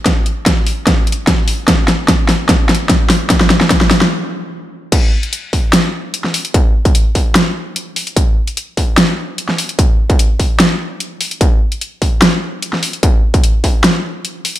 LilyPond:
\new DrumStaff \with { instrumentName = "Drums" } \drummode { \time 4/4 \tempo 4 = 148 <hh bd sn>8 hh8 <hh bd sn>8 hho8 <hh bd sn>8 hh32 hh16. <hh bd sn>8 hho8 | <hh bd sn>8 <hh sn>8 <hh bd sn>8 <hho sn>8 <hh bd sn>8 <hh sn>32 hh16. <hh bd sn>8 <hho sn>8 | <hh bd sn>16 sn16 <hh sn>16 sn16 <hh bd sn>16 sn16 <hho sn>16 sn16 r4 r4 | <cymc hh bd>8. hh16 hh8 <hho bd>8 <hh sn>4 hh16 sn16 hho16 hh16 |
<hh bd>8. <hh bd>16 hh8 <hho bd>8 <hh sn>4 hh8 hho16 hh16 | <hh bd>8. hh16 hh8 <hho bd>8 <hh sn>4 hh16 sn16 hho16 hh16 | <hh bd>8. <hh bd>16 hh8 <hho bd>8 <hh sn>4 hh8 hho16 hh16 | <hh bd>8. hh16 hh8 <hho bd>8 <hh sn>4 hh16 sn16 hho16 hh16 |
<hh bd>8. <hh bd>16 hh8 <hho bd>8 <hh sn>4 hh8 hho16 hh16 | }